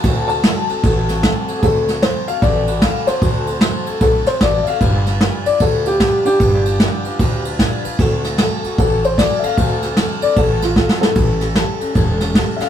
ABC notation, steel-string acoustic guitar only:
X:1
M:4/4
L:1/8
Q:"Swing" 1/4=151
K:Dmix
V:1 name="Steel-string acoustic guitar"
[D,A,CFA] [CFA] [A,CFA] [CFA] [D,A,CFA] [CFA] [A,CFA] [CFA] | [D,A,CFA] [CFA] [A,CFA] [CFA] [D,A,CFA] [CFA] [A,CFA] [CFA] | [D,A,CFA] [CFA] [A,CFA] [CFA] [D,A,CFA] [CFA] [A,CFA] [CFA] | [G,D=FB] [DFB] [G,DFB] [DFB] [G,DFB] [DFB] [G,DFB] [DFB] |
[G,D=FB] [DFB] [G,DFB] [DFB] [G,DFB] [DFB] [G,DFB] [DFB] | [D,A,CFA] [CFA] [A,CFA] [CFA] [D,A,CFA] [CFA] [A,CFA] [CFA] | [D,A,CFA] [CFA] [A,CFA] [CFA] [D,A,CFA] [CFA] [A,CFA] [CFA] | [A,,E,G,^CGA] [G,CGA] [G,CGA] [G,CGA] [A,,E,G,CGA] [G,CGA] [G,CGA] [G,CGA] |]